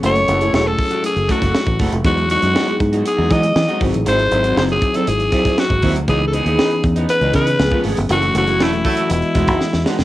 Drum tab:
HH |xxxx--oxxxxx-xox|xxxx-xxxx-xx-xox|xxxx-xxxxxxx-xox|x-xx-xxxxxxx--ox|
SD |----o-----ooo---|----o-----o-o---|----o-----ooo---|----o-----o-o---|
BD |------o---oo-oo-|o-----o---o---o-|------o---oo-oo-|o-----o---o--o--|

HH |xxxx-xoxxxxx----|
SD |----o-----oooooo|
BD |------o---oo----|